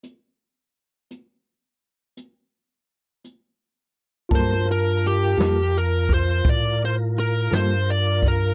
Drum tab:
HH |x--x--x--x--|x-xx-xx-xx-x|
SD |------------|---o-----o-o|
BD |------------|o----oo----o|